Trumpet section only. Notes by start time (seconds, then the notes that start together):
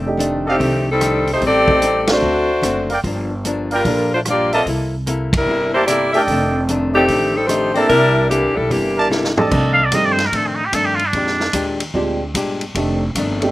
0.46 A4 D5 D#5 F5
2.90 A#4 D5 F5 G5
3.71 A#4 D5 F5 G5
4.52 A#4 D5 E5 A5
5.74 A#4 D5 E5 A5
6.14 A4 D5 D#5 G5
6.94 A4 D5 D#5 G5
7.75 A#4 D5 E5 A5
8.97 A#4 D5 E5 A5
9.37 A4 D5 D#5 A5